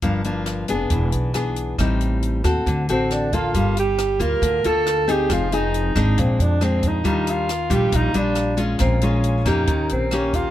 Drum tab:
HH |xxxxxxxx|xxxxxxxx|xxxxxxxx|xxxxxxxx|
SD |--r---r-|r--r--r-|--r---r-|r--r--r-|
BD |o---o---|o--oo--o|o--oo---|o--oo--o|

HH |xxxxxxxx|xxxxxxxx|
SD |--r---r-|r--r--r-|
BD |o--oo---|o--oo--o|